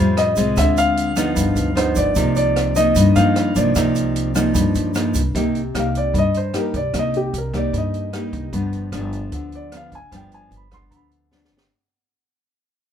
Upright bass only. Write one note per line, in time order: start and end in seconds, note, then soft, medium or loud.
0.00 0.34 F2 medium
0.37 0.55 C2 medium
0.57 1.33 D2 medium
1.36 1.57 G1 medium
1.56 1.93 D2 medium
1.96 2.15 G1 medium
2.16 2.92 C2 medium
2.96 3.14 G2 medium
3.16 3.53 G2 medium
3.56 3.74 C2 medium
3.76 4.51 C2 medium
4.55 4.73 G2 medium
4.76 5.12 G2 medium
5.15 5.33 C2 medium
5.35 5.72 C2 medium
5.75 6.12 C2 medium
6.14 6.70 G2 medium
6.74 6.92 C2 medium
6.94 7.31 C2 medium
7.34 7.70 C2 medium
7.73 8.29 G2 medium
8.33 8.51 C2 medium
8.53 8.90 G1 medium
8.92 9.29 G1 medium
9.32 9.88 D2 medium
9.92 10.10 G1 medium
10.12 10.49 G1 medium
10.51 10.88 G1 medium
10.91 11.47 D2 medium
11.51 11.69 G1 medium